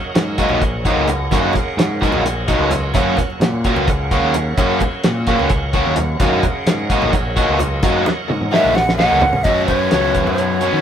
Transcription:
Already playing: tanpura F#2 C#3 F#3, tonewheel organ A#4 C#5 D#5 F#5
0.03 low conga
0.15 fingered electric bass G#2, tanpura F#3, muted overdriven electric guitar stroke, snare, closed hi-hat
0.26 low conga
0.38 overdriven electric guitar F#3 A#3 D#4 F#4, kick, closed hi-hat
0.49 fingered electric bass A#1, high conga, low conga
0.62 muted overdriven electric guitar stroke, kick, closed hi-hat
0.78 tanpura F#2
0.85 overdriven electric guitar F#3 A#3 D#4 F#4, kick, closed hi-hat
0.97 fingered electric bass C#2
1.08 muted overdriven electric guitar stroke, closed hi-hat, low conga
1.31 fingered electric bass F#2, overdriven electric guitar F#3 A#3 D#4 F#4, kick, closed hi-hat, high conga, low conga
1.40 tanpura C#3
1.53 muted overdriven electric guitar stroke, kick, closed hi-hat, low conga
1.77 fingered electric bass G#2, muted overdriven electric guitar stroke, snare, closed hi-hat, low conga
2.00 tanpura F#3, overdriven electric guitar F#3 A#3 D#4 F#4, kick, closed hi-hat, low conga
2.12 fingered electric bass A#1, high conga, low conga
2.25 muted overdriven electric guitar stroke, closed hi-hat
2.48 overdriven electric guitar F#3 A#3 D#4 F#4, kick, closed hi-hat
2.59 fingered electric bass C#2, low conga
2.65 tanpura F#3
2.71 muted overdriven electric guitar stroke, closed hi-hat, low conga
2.83 low conga
2.94 fingered electric bass F#2, overdriven electric guitar F#3 A#3 C#4 F#4, tonewheel organ A#4 C#5, kick, closed hi-hat, high conga
3.17 muted overdriven electric guitar stroke, kick, closed hi-hat, low conga
3.26 tanpura F#2, low conga
3.40 fingered electric bass A#2, muted overdriven electric guitar stroke, snare, closed hi-hat
3.52 low conga
3.64 overdriven electric guitar F#3 A#3 C#4 F#4, kick, closed hi-hat
3.76 fingered electric bass C#2, high conga, low conga
3.87 tanpura C#3, muted overdriven electric guitar stroke, kick, closed hi-hat
4.11 overdriven electric guitar F#3 A#3 C#4 F#4, kick, closed hi-hat
4.23 fingered electric bass D#2
4.34 muted overdriven electric guitar stroke, closed hi-hat, low conga
4.49 tanpura F#3
4.57 fingered electric bass F#2, overdriven electric guitar F#3 A#3 C#4 F#4, kick, closed hi-hat, high conga
4.80 muted overdriven electric guitar stroke, kick, closed hi-hat, low conga
4.95 low conga
5.04 fingered electric bass A#2, muted overdriven electric guitar stroke, snare, closed hi-hat
5.12 tanpura F#3
5.18 low conga
5.27 overdriven electric guitar F#3 A#3 C#4 F#4, kick, snare, closed hi-hat
5.39 fingered electric bass C#2, high conga, low conga
5.50 muted overdriven electric guitar stroke, kick, closed hi-hat
5.73 tanpura F#2, overdriven electric guitar F#3 A#3 C#4 F#4, kick, closed hi-hat
5.86 fingered electric bass D#2
5.96 muted overdriven electric guitar stroke, closed hi-hat, low conga
6.20 fingered electric bass F#2, overdriven electric guitar F#3 A#3 D#4 F#4, tonewheel organ C#5 D#5, kick, closed hi-hat, high conga
6.35 tanpura C#3
6.43 muted overdriven electric guitar stroke, kick, closed hi-hat, low conga
6.55 low conga
6.66 fingered electric bass G#2, muted overdriven electric guitar stroke, snare, closed hi-hat
6.80 low conga
6.90 overdriven electric guitar F#3 A#3 D#4 F#4, kick, closed hi-hat
6.97 tanpura F#3
7.02 fingered electric bass A#1, high conga, low conga
7.13 muted overdriven electric guitar stroke, kick, closed hi-hat
7.36 overdriven electric guitar F#3 A#3 D#4 F#4, kick, closed hi-hat
7.49 fingered electric bass C#2
7.59 tanpura F#3, muted overdriven electric guitar stroke, closed hi-hat, low conga
7.83 fingered electric bass F#2, overdriven electric guitar F#3 A#3 D#4 F#4, kick, closed hi-hat, high conga
8.06 muted overdriven electric guitar stroke, snare, low conga
8.21 tanpura F#2
8.28 fingered electric bass G#2, muted overdriven electric guitar stroke, high tom
8.41 mid tom
8.52 overdriven electric guitar F#3 A#3 D#4 F#4, flute E5, snare, low conga
8.64 fingered electric bass A#1, high conga
8.75 flute F#5, muted overdriven electric guitar stroke, snare, low conga
8.82 tanpura C#3
8.89 snare
8.96 overdriven electric guitar F#3 A#3 D#4 F#4, flute F#5, snare, high conga
9.09 fingered electric bass C#2, high conga
9.21 muted overdriven electric guitar stroke, floor tom, low conga
9.33 floor tom, low conga
9.43 fingered electric bass F#2, overdriven electric guitar F#3 B3, tonewheel organ F#4 B4 C#5, flute D#5, kick, closed hi-hat, high conga
9.47 overdriven electric guitar C#4 F#4
9.66 overdriven electric guitar C#4 F#4, flute C#5, kick, closed hi-hat, low conga
9.72 overdriven electric guitar B3
9.80 low conga
9.91 fingered electric bass C#2, overdriven electric guitar F#3 B3 C#4, snare, closed hi-hat
9.95 overdriven electric guitar F#4
10.15 kick, closed hi-hat
10.26 fingered electric bass F#2, high conga, low conga
10.33 flute C#5
10.38 closed hi-hat
10.60 overdriven electric guitar B3 C#4 F#4, closed hi-hat, low conga
10.73 fingered electric bass D#3, low conga

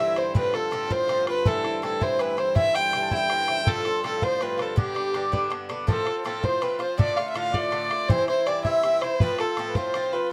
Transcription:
Already playing: harmonium G2 D3, accordion E5, fiddle E5
0.00 bouzouki G2 E3 C4 E4
0.16 bouzouki E3 C4 E4, accordion C5, fiddle C5, bodhran
0.34 bouzouki A2 F3 C4 F4, accordion B4, fiddle B4, bodhran
0.53 bouzouki F3 C4 F4, accordion A4, fiddle A4, bodhran
0.71 bouzouki A2 F3 C4 F4, bodhran
0.90 bouzouki A2 F3 C4 F4, accordion C5, fiddle C5, bodhran
1.01 accordion C5
1.08 bouzouki A2 F3 C4 F4, bodhran
1.14 accordion C5
1.26 bouzouki F3 C4 F4, accordion B4, fiddle B4, bodhran
1.45 harmonium G2 D3, bouzouki A2 E3 C4 E4, accordion A4, fiddle A4, bodhran
1.64 bouzouki E3 C4 E4, bodhran
1.82 bouzouki A2 E3 C4 E4, fiddle A4, bodhran
2.00 bouzouki A2 E3 C4 E4, accordion C5, fiddle C5, bodhran
2.18 bouzouki A2 E3 C4 E4, accordion B4, fiddle B4, bodhran
2.37 bouzouki E3 C4 E4, accordion C5, fiddle C5, bodhran
2.55 bouzouki G2 E3 C4 E4, accordion E5, fiddle E5, bodhran
2.74 bouzouki E3 C4 E4, accordion G5, fiddle G5, bodhran
2.93 bouzouki G2 E3 C4 E4, bodhran
3.02 accordion A5
3.09 bouzouki E3 C4 E4, accordion G5, bodhran
3.13 bouzouki G2, fiddle G5
3.30 bouzouki G2 E3 C4 E4, bodhran
3.48 bouzouki E3 C4 E4, bodhran
3.65 bouzouki A2 F3 C4 F4, accordion A4, fiddle A4, bodhran
3.85 bouzouki F3 C4 F4, bodhran
4.04 bouzouki A2 F3 C4 F4, accordion A4, fiddle A4, bodhran
4.21 bouzouki A2 F3 C4 F4, accordion C5, fiddle C5, bodhran
4.40 bouzouki A2 F3 C4 F4, accordion B4, fiddle B4, bodhran
4.58 bouzouki F3 C4 F4, fiddle A4, bodhran
4.76 bouzouki G2 D3 B3 D4, accordion G4, fiddle G4, bodhran
4.94 bouzouki D3 B3 D4, bodhran
5.14 bouzouki G2 D3 B3 D4, bodhran
5.32 bouzouki G2 D3 B3 D4, bodhran
5.50 bouzouki G2 D3 B3 D4, bodhran
5.69 bouzouki D3 B3 D4, bodhran
5.87 bouzouki A2 F3 C4 F4, accordion A4, fiddle A4, bodhran
6.05 bouzouki F3 C4 F4, bodhran
6.25 bouzouki A2 F3 C4 F4, fiddle A4, bodhran
6.43 bouzouki A2 F3 C4 F4, accordion C5, fiddle C5, bodhran
6.61 bouzouki A2 F3 C4 F4, accordion B4, fiddle B4, bodhran
6.79 bouzouki F3 C4 F4, accordion C5, fiddle C5, bodhran
6.98 bouzouki A2 D3 A3 F4, accordion D5, fiddle D5, bodhran
7.16 bouzouki D3 A3 F4, fiddle F5, accordion F5, bodhran
7.30 fiddle E5
7.34 bouzouki A2 D3 A3 F4, accordion F5, fiddle F5, bodhran
7.52 bouzouki A2 D3 A3 F4, accordion D5, fiddle D5, bodhran
7.71 bouzouki A2 D3 A3 F4, bodhran
7.90 bouzouki D3 A3 F4, bodhran
8.08 bouzouki G2 E3 C4 E4, accordion C5, fiddle C5, bodhran
8.27 bouzouki E3 C4 E4, accordion C5, fiddle C5, bodhran
8.46 bouzouki G2 E3 C4 E4, fiddle D5, accordion D5, bodhran
8.65 bouzouki G2 E3 C4 E4, accordion E5, fiddle E5, bodhran
8.83 bouzouki G2 E3 C4 E4, bodhran
9.01 bouzouki E3 C4 E4, accordion C5, fiddle C5, bodhran
9.20 bouzouki A2 F3 C4 F4, accordion B4, fiddle B4, bodhran
9.39 bouzouki F3 C4 F4, accordion A4, fiddle A4, bodhran
9.57 bouzouki A2 F3 C4 F4, bodhran
9.68 accordion B4
9.75 bouzouki A2 F3 C4 F4, accordion C5, fiddle C5, bodhran
9.94 bouzouki A2 F3 C4 F4, bodhran
10.12 bouzouki F3 C4 F4, fiddle B4, accordion B4

